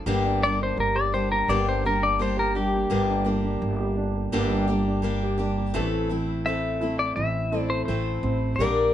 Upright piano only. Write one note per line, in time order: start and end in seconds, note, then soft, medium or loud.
0.06 0.40 A#3 medium
0.06 0.93 G4 medium
0.24 0.58 D4 medium
0.42 0.75 A#3 medium
0.59 1.12 D4 medium
0.77 1.29 A#3 medium
0.95 1.48 G4 medium
1.13 1.65 D4 medium
1.31 1.47 A#3 medium
1.49 1.83 A#3 medium
1.49 2.35 G4 medium
1.67 2.00 D4 medium
1.84 2.18 A#3 medium
2.02 2.53 D4 medium
2.20 2.72 A#3 medium
2.37 2.90 G4 medium
2.55 2.98 D4 medium
2.74 2.90 A#3 medium
2.91 3.25 A#3 medium
2.91 3.78 G4 medium
3.09 3.43 D4 medium
3.27 3.60 A#3 medium
3.44 3.95 D4 medium
3.61 4.13 A#3 medium
3.80 4.32 G4 medium
3.97 4.49 D4 medium
4.15 4.31 A#3 medium
4.33 4.68 A#3 medium
4.33 5.21 G4 medium
4.51 4.85 D4 medium
4.69 5.03 A#3 medium
4.87 5.39 D4 medium
5.04 5.56 A#3 medium
5.23 5.83 G4 medium
5.40 5.82 D4 medium
5.58 5.82 A#3 medium
5.74 6.08 E3 medium
5.74 6.79 E4 medium
6.10 7.14 E3 medium
6.46 7.50 C4 medium
6.81 7.86 E4 medium
7.16 8.58 E3 medium
7.52 8.22 C4 medium
7.88 8.59 E4 medium
8.24 8.66 C4 medium
8.59 8.92 G3 medium
8.59 8.94 D4 medium